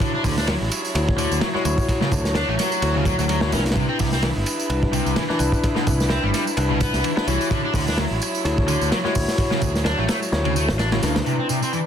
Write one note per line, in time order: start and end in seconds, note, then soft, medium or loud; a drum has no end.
0.00 0.10 D3 medium
0.00 3.72 F#3 medium
0.00 0.92 E4 medium
0.00 1.84 E4 medium
0.00 0.92 F#4 medium
0.00 0.92 C#5 medium
0.00 3.72 C#5 medium
0.00 kick loud
0.00 ride medium
0.15 0.21 D4 loud
0.24 0.55 D2 medium
0.24 0.34 D3 medium
0.24 kick loud
0.24 open hi-hat medium
0.24 tambourine medium
0.38 0.47 D4 medium
0.38 snare medium
0.38 tambourine soft
0.47 0.53 F#3 medium
0.47 snare loud
0.47 ride medium
0.47 tambourine soft
0.61 0.69 A1 medium
0.71 ride medium
0.71 tambourine medium
0.85 tambourine soft
0.95 1.26 D2 medium
0.95 1.52 E4 medium
0.95 1.52 F#4 medium
0.95 1.52 C#5 medium
0.95 ride medium
0.95 tambourine soft
1.09 kick medium
1.18 1.41 D3 medium
1.18 ride medium
1.18 tambourine medium
1.31 1.39 D2 medium
1.31 tambourine soft
1.41 1.47 F#3 medium
1.41 snare loud
1.41 ride medium
1.55 1.62 G#3 loud
1.55 1.63 E4 loud
1.55 1.63 F#4 medium
1.55 1.63 C#5 loud
1.55 snare soft
1.65 1.75 D2 medium
1.65 2.80 E4 medium
1.65 2.80 F#4 medium
1.65 2.80 C#5 medium
1.65 ride medium
1.65 tambourine medium
1.78 kick medium
1.78 tambourine soft
1.89 3.74 F#4 medium
1.89 kick loud
1.89 ride medium
1.89 tambourine soft
2.01 2.09 C#3 loud
2.01 snare medium
2.11 2.43 D2 loud
2.11 kick loud
2.11 ride medium
2.11 tambourine medium
2.25 snare soft
2.25 tambourine soft
2.35 2.48 D4 medium
2.35 snare loud
2.35 ride medium
2.35 tambourine soft
2.48 2.56 A1 medium
2.48 2.53 A3 loud
2.59 2.94 F#3 loud
2.59 snare soft
2.59 ride medium
2.59 tambourine medium
2.72 tambourine soft
2.82 3.13 D2 medium
2.82 3.39 E4 medium
2.82 3.39 F#4 medium
2.82 3.39 C#5 medium
2.82 ride medium
2.82 tambourine soft
2.95 3.02 C#3 loud
3.05 3.15 F#3 medium
3.05 kick medium
3.05 ride medium
3.05 tambourine medium
3.19 3.54 D2 medium
3.19 3.23 F#3 medium
3.19 tambourine soft
3.29 3.38 F#3 loud
3.29 ride medium
3.29 tambourine soft
3.41 3.52 D3 medium
3.41 3.50 E4 loud
3.41 3.50 F#4 medium
3.41 3.50 C#5 loud
3.41 snare loud
3.52 3.84 C2 medium
3.52 3.62 C#4 medium
3.52 4.67 D4 medium
3.52 4.67 E4 medium
3.52 4.67 B4 medium
3.52 snare medium
3.52 ride medium
3.52 tambourine medium
3.59 snare medium
3.59 ride medium
3.65 snare medium
3.65 ride medium
3.65 tambourine soft
3.71 snare medium
3.71 ride medium
3.76 3.85 C3 medium
3.76 11.22 E4 medium
3.76 7.47 B4 medium
3.76 kick loud
3.76 ride medium
3.76 tambourine soft
3.89 3.96 C4 loud
3.99 4.31 C2 loud
3.99 4.09 C3 medium
3.99 kick medium
3.99 open hi-hat medium
3.99 tambourine medium
4.12 4.22 C4 medium
4.12 snare medium
4.12 tambourine soft
4.23 4.28 E3 medium
4.23 snare loud
4.23 ride medium
4.23 tambourine soft
4.36 4.44 G1 medium
4.46 ride medium
4.46 tambourine medium
4.59 tambourine soft
4.70 5.01 C2 medium
4.70 5.27 D4 medium
4.70 5.27 E4 medium
4.70 5.27 B4 medium
4.70 ride medium
4.70 tambourine soft
4.83 kick medium
4.93 5.16 C3 medium
4.93 ride medium
4.93 tambourine medium
5.06 5.14 C2 medium
5.06 tambourine soft
5.16 5.22 E3 medium
5.16 snare loud
5.16 ride medium
5.16 tambourine soft
5.29 5.37 E3 loud
5.29 5.38 D4 medium
5.29 5.38 E4 medium
5.29 5.38 B4 loud
5.29 snare soft
5.39 5.50 C2 medium
5.39 6.55 D4 medium
5.39 6.55 E4 medium
5.39 6.55 B4 medium
5.39 ride medium
5.39 tambourine medium
5.52 kick medium
5.52 tambourine soft
5.64 kick loud
5.64 ride medium
5.64 tambourine soft
5.76 5.84 B2 medium
5.76 snare soft
5.87 6.18 C2 loud
5.87 kick medium
5.87 ride medium
5.87 tambourine medium
6.00 snare soft
6.00 tambourine soft
6.10 6.23 C4 medium
6.10 snare loud
6.10 ride medium
6.10 tambourine soft
6.23 6.31 G1 medium
6.23 6.28 G3 loud
6.33 6.43 G3 medium
6.33 snare soft
6.33 ride medium
6.33 tambourine medium
6.47 tambourine soft
6.57 6.88 C2 medium
6.57 7.14 D4 medium
6.57 7.14 E4 medium
6.57 7.14 B4 medium
6.57 ride medium
6.57 tambourine soft
6.70 6.77 B2 loud
6.80 7.03 B3 medium
6.80 kick medium
6.80 ride medium
6.80 tambourine medium
6.93 7.01 C2 medium
6.93 snare soft
6.93 tambourine soft
7.04 7.09 E3 medium
7.04 ride medium
7.04 tambourine soft
7.17 7.26 B3 loud
7.17 7.25 D4 medium
7.17 7.25 E4 medium
7.17 7.25 B4 loud
7.17 snare loud
7.27 7.37 C2 medium
7.27 7.50 E3 loud
7.27 8.42 E4 medium
7.27 8.42 F#4 medium
7.27 8.42 C#5 medium
7.27 ride medium
7.27 tambourine medium
7.41 tambourine soft
7.51 7.60 D3 medium
7.51 11.22 F#3 medium
7.51 11.22 C#5 medium
7.51 kick loud
7.51 ride medium
7.64 7.71 D4 loud
7.74 8.05 D2 loud
7.74 7.84 D3 medium
7.74 kick loud
7.74 open hi-hat medium
7.74 tambourine medium
7.88 7.97 D4 medium
7.88 snare medium
7.88 tambourine soft
7.98 8.03 F#3 medium
7.98 snare loud
7.98 ride medium
7.98 tambourine soft
8.11 8.19 A1 medium
8.22 ride medium
8.22 tambourine medium
8.35 tambourine soft
8.45 8.76 D2 loud
8.45 9.02 E4 medium
8.45 9.02 F#4 medium
8.45 9.02 C#5 medium
8.45 ride medium
8.45 tambourine soft
8.58 kick medium
8.68 8.91 D3 medium
8.68 ride medium
8.68 tambourine medium
8.81 8.89 D2 medium
8.81 tambourine soft
8.92 8.97 F#3 medium
8.92 snare loud
8.92 ride medium
8.92 tambourine soft
9.05 9.12 G#3 loud
9.05 9.13 E4 loud
9.05 9.13 F#4 medium
9.05 9.13 C#5 loud
9.05 snare soft
9.15 9.25 D2 medium
9.15 10.30 E4 medium
9.15 10.30 F#4 medium
9.15 10.30 C#5 medium
9.15 kick medium
9.15 open hi-hat medium
9.15 tambourine medium
9.28 snare soft
9.28 tambourine soft
9.38 kick loud
9.38 ride medium
9.38 tambourine soft
9.51 9.59 C#3 loud
9.51 snare medium
9.62 9.93 D2 loud
9.62 kick medium
9.62 ride medium
9.62 tambourine medium
9.75 snare medium
9.75 tambourine soft
9.85 9.98 D4 medium
9.85 snare loud
9.85 ride medium
9.85 tambourine soft
9.99 10.06 A1 medium
9.99 10.03 A3 loud
10.08 10.18 A3 medium
10.08 snare loud
10.08 ride medium
10.08 tambourine medium
10.22 tambourine soft
10.32 10.70 D2 loud
10.32 10.89 E4 medium
10.32 10.89 F#4 medium
10.32 10.89 C#5 medium
10.32 snare loud
10.32 tambourine soft
10.45 10.53 C#3 loud
10.45 ride medium
10.56 10.68 A3 medium
10.56 tambourine medium
10.69 10.98 A1 medium
10.69 snare loud
10.69 tambourine soft
10.79 10.88 D4 medium
10.79 snare loud
10.79 ride medium
10.79 tambourine soft
10.92 11.00 C#3 medium
10.92 11.00 E4 loud
10.92 11.00 F#4 medium
10.92 11.00 C#5 loud
10.92 snare loud
10.92 ride medium
11.02 11.21 D2 loud
11.02 11.14 C#3 medium
11.02 11.50 D4 medium
11.02 11.49 E4 medium
11.02 11.49 B4 medium
11.02 snare loud
11.02 ride medium
11.02 tambourine medium
11.16 snare loud
11.16 ride medium
11.16 tambourine soft
11.26 11.35 C3 medium
11.26 11.87 E3 medium
11.26 11.87 D4 medium
11.26 11.87 B4 medium
11.26 tambourine soft
11.39 11.46 C4 medium
11.49 11.58 C3 medium
11.49 tambourine medium
11.62 11.72 C4 medium
11.62 tambourine soft
11.73 11.78 E3 medium
11.73 tambourine soft